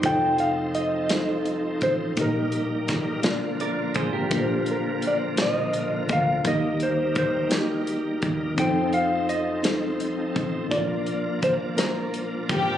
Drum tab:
HH |xxxxxx|xxxxxx|xxxxxx|xxxxxx|
SD |---o--|--oo--|---o--|---o--|
BD |o----o|o-o--o|o----o|o-o--o|

HH |xxxxxx|xxxxxx|
SD |---o--|---o--|
BD |o----o|o-o--o|